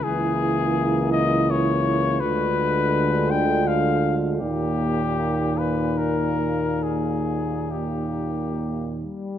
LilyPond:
<<
  \new Staff \with { instrumentName = "Cornet" } { \time 3/4 \key dis \phrygian \tempo 4 = 79 gis'4. dis''8 cis''4 | b'4. g''8 f''8 r8 | g'4. b'8 ais'4 | gis'4 g'4. r8 | }
  \new Staff \with { instrumentName = "French horn section" } { \time 3/4 \key dis \phrygian e'2. | f'2. | dis'2.~ | dis'2~ dis'8 r8 | }
  \new Staff \with { instrumentName = "Trombone section" } { \time 3/4 \key dis \phrygian ais2. | aes2. | ais2.~ | ais2~ ais8 g8 | }
  \new Staff \with { instrumentName = "Euphonium" } { \clef bass \time 3/4 \key dis \phrygian e2. | d2. | ais,2.~ | ais,2~ ais,8 r8 | }
  \new Staff \with { instrumentName = "Tuba" } { \clef bass \time 3/4 \key dis \phrygian cis,2. | d,2. | dis,2.~ | dis,2~ dis,8 r8 | }
>>